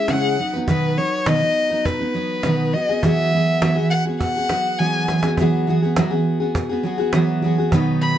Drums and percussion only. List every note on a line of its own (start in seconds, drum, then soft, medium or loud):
0.08 cajon slap loud
0.68 cajon bass loud
1.26 cajon slap loud
1.85 cajon bass loud
2.43 cajon slap medium
3.03 cajon bass loud
3.62 cajon slap loud
4.21 cajon bass loud
4.49 cajon slap loud
5.08 cajon slap medium
5.23 cajon slap medium
5.37 cajon bass medium
5.96 cajon slap loud
6.55 cajon bass loud
7.13 cajon slap loud
7.72 cajon bass loud